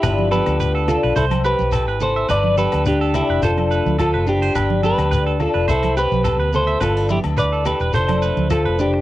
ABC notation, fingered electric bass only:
X:1
M:4/4
L:1/16
Q:1/4=106
K:Gmix
V:1 name="Fingered electric bass" clef=bass
G,,,3 D,,4 B,,, C,,3 B,,,2 _A,,,3 | G,,,3 D,,4 F,,, F,,,3 D,,2 ^F,,,3 | G,,,3 D,,4 F,,, C,,3 B,,,2 D,,3 | G,,,3 D,,4 E,,, F,,,3 D,,2 F,,,3 |]